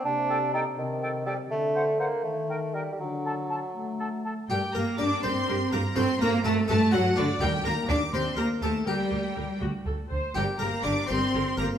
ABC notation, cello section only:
X:1
M:6/8
L:1/8
Q:3/8=82
K:Gm
V:1 name="Cello section"
z6 | z6 | z6 | G, B, D C2 B, |
C B, A, A, ^F, D, | G, B, D C B, A, | G,3 z3 | G, B, D C2 B, |]